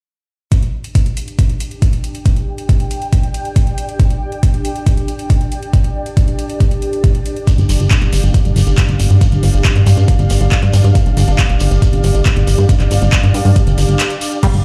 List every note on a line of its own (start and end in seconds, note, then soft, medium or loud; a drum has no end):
0.52 14.65 D4 medium
0.52 kick loud
0.52 closed hi-hat medium
0.63 closed hi-hat soft
0.75 14.65 G4 medium
0.84 closed hi-hat soft
0.95 kick loud
0.95 closed hi-hat loud
1.06 closed hi-hat soft
1.17 closed hi-hat medium
1.28 closed hi-hat soft
1.39 kick loud
1.39 closed hi-hat medium
1.46 14.65 D5 medium
1.46 7.31 G5 medium
1.46 closed hi-hat soft
1.60 closed hi-hat medium
1.71 closed hi-hat soft
1.82 kick loud
1.82 closed hi-hat loud
1.93 closed hi-hat soft
2.04 closed hi-hat medium
2.15 closed hi-hat soft
2.26 kick loud
2.26 closed hi-hat medium
2.36 closed hi-hat soft
2.58 closed hi-hat soft
2.69 kick loud
2.69 closed hi-hat medium
2.80 closed hi-hat soft
2.91 closed hi-hat medium
3.02 closed hi-hat soft
3.13 kick loud
3.13 closed hi-hat medium
3.23 closed hi-hat soft
3.34 closed hi-hat medium
3.45 closed hi-hat soft
3.56 kick loud
3.56 closed hi-hat medium
3.67 closed hi-hat soft
3.78 closed hi-hat medium
3.89 closed hi-hat soft
4.00 kick loud
4.00 closed hi-hat medium
4.10 closed hi-hat soft
4.32 closed hi-hat soft
4.43 kick loud
4.43 closed hi-hat medium
4.54 closed hi-hat soft
4.65 closed hi-hat medium
4.76 closed hi-hat soft
4.87 kick loud
4.87 closed hi-hat medium
4.97 closed hi-hat soft
5.08 closed hi-hat medium
5.19 closed hi-hat soft
5.30 kick loud
5.30 closed hi-hat medium
5.41 closed hi-hat soft
5.52 closed hi-hat medium
5.63 closed hi-hat soft
5.73 kick loud
5.73 closed hi-hat medium
5.84 closed hi-hat soft
6.06 closed hi-hat soft
6.17 kick loud
6.17 closed hi-hat medium
6.28 closed hi-hat soft
6.39 closed hi-hat medium
6.50 closed hi-hat soft
6.60 kick loud
6.60 closed hi-hat medium
6.71 closed hi-hat soft
6.82 closed hi-hat medium
6.93 closed hi-hat soft
7.04 kick loud
7.04 closed hi-hat medium
7.15 14.65 F5 medium
7.15 closed hi-hat soft
7.26 closed hi-hat medium
7.37 closed hi-hat soft
7.47 kick loud
7.47 closed hi-hat medium
7.47 shekere medium
7.58 7.65 G1 medium
7.58 closed hi-hat soft
7.58 shekere soft
7.69 7.76 G1 loud
7.69 open hi-hat loud
7.69 shekere medium
7.80 7.87 G1 loud
7.80 closed hi-hat soft
7.80 shekere soft
7.91 kick loud
7.91 clap loud
7.91 closed hi-hat medium
7.91 shekere soft
8.02 8.09 G1 medium
8.02 closed hi-hat soft
8.02 shekere soft
8.13 8.20 G1 loud
8.13 open hi-hat loud
8.13 shekere medium
8.23 8.31 G1 medium
8.23 closed hi-hat soft
8.23 shekere soft
8.34 kick loud
8.34 closed hi-hat medium
8.34 shekere medium
8.45 8.52 G1 medium
8.45 closed hi-hat soft
8.45 shekere soft
8.56 8.63 G1 loud
8.56 open hi-hat loud
8.56 shekere medium
8.67 8.74 G1 medium
8.67 closed hi-hat soft
8.67 shekere soft
8.78 kick loud
8.78 clap loud
8.78 closed hi-hat medium
8.78 shekere medium
8.89 8.96 G1 medium
8.89 closed hi-hat soft
8.89 shekere soft
9.00 9.07 G1 medium
9.00 open hi-hat loud
9.00 shekere medium
9.10 9.18 G2 medium
9.10 closed hi-hat soft
9.10 shekere soft
9.21 kick loud
9.21 closed hi-hat medium
9.21 shekere medium
9.32 9.39 G1 medium
9.32 closed hi-hat soft
9.32 shekere soft
9.43 9.50 G1 loud
9.43 open hi-hat loud
9.43 shekere medium
9.54 9.61 G1 medium
9.54 closed hi-hat soft
9.54 shekere soft
9.65 kick loud
9.65 clap loud
9.65 closed hi-hat medium
9.76 9.83 G2 medium
9.76 closed hi-hat soft
9.76 shekere soft
9.86 9.94 G2 loud
9.86 open hi-hat loud
9.86 shekere medium
9.97 10.05 G2 medium
9.97 closed hi-hat soft
9.97 shekere soft
10.08 kick loud
10.08 closed hi-hat medium
10.08 shekere medium
10.19 10.26 G1 medium
10.19 closed hi-hat soft
10.19 shekere soft
10.30 10.37 G1 loud
10.30 open hi-hat loud
10.30 shekere medium
10.41 10.48 G1 medium
10.41 closed hi-hat soft
10.41 shekere soft
10.52 kick loud
10.52 clap loud
10.52 closed hi-hat medium
10.52 shekere soft
10.63 10.70 G2 medium
10.63 closed hi-hat soft
10.63 shekere soft
10.73 10.81 G2 medium
10.73 open hi-hat loud
10.73 shekere medium
10.84 10.92 G2 medium
10.84 closed hi-hat soft
10.84 shekere soft
10.95 kick loud
10.95 closed hi-hat medium
10.95 shekere soft
11.06 11.13 G1 medium
11.06 closed hi-hat soft
11.06 shekere soft
11.17 11.24 G1 loud
11.17 open hi-hat loud
11.17 shekere medium
11.28 11.35 G1 loud
11.28 closed hi-hat soft
11.28 shekere soft
11.39 kick loud
11.39 clap loud
11.39 closed hi-hat loud
11.49 11.57 G1 medium
11.49 closed hi-hat soft
11.49 shekere soft
11.60 11.68 G1 loud
11.60 open hi-hat loud
11.60 shekere medium
11.71 11.79 G1 medium
11.71 closed hi-hat soft
11.71 shekere soft
11.82 kick loud
11.82 closed hi-hat medium
11.82 shekere medium
11.93 12.00 G1 medium
11.93 closed hi-hat soft
11.93 shekere soft
12.03 12.11 G1 loud
12.03 open hi-hat loud
12.03 shekere medium
12.15 12.22 G1 medium
12.15 closed hi-hat soft
12.15 shekere soft
12.26 kick loud
12.26 clap loud
12.26 closed hi-hat loud
12.26 shekere soft
12.36 12.44 G1 medium
12.36 closed hi-hat soft
12.36 shekere soft
12.47 12.55 G1 loud
12.47 open hi-hat loud
12.47 shekere medium
12.58 12.66 G2 medium
12.58 closed hi-hat soft
12.58 shekere soft
12.69 kick loud
12.69 closed hi-hat medium
12.69 shekere medium
12.80 12.87 G1 medium
12.80 clap soft
12.80 closed hi-hat soft
12.80 shekere soft
12.91 12.98 G1 loud
12.91 open hi-hat loud
12.91 shekere medium
13.02 13.09 G1 loud
13.02 closed hi-hat soft
13.02 shekere soft
13.12 kick loud
13.12 clap loud
13.12 closed hi-hat loud
13.12 shekere medium
13.23 13.31 G2 medium
13.23 closed hi-hat soft
13.23 shekere soft
13.34 13.42 G2 loud
13.34 open hi-hat loud
13.34 shekere medium
13.45 13.52 G2 medium
13.45 open hi-hat medium
13.45 shekere soft
13.56 kick loud
13.56 closed hi-hat medium
13.56 shekere medium
13.67 13.74 G1 medium
13.67 closed hi-hat soft
13.67 shekere soft
13.78 13.85 G1 loud
13.78 open hi-hat loud
13.78 shekere medium
13.88 13.96 G1 medium
13.88 closed hi-hat soft
13.88 shekere soft
13.99 clap loud
13.99 closed hi-hat medium
13.99 shekere medium
14.10 closed hi-hat soft
14.10 shekere soft
14.21 open hi-hat loud
14.21 shekere medium
14.32 closed hi-hat soft
14.32 shekere soft
14.43 14.65 G3 medium
14.43 14.47 G3 medium
14.43 14.65 D4 medium
14.43 kick loud
14.43 closed hi-hat medium
14.43 crash medium
14.43 shekere medium
14.54 14.61 G1 medium
14.54 closed hi-hat soft
14.54 shekere soft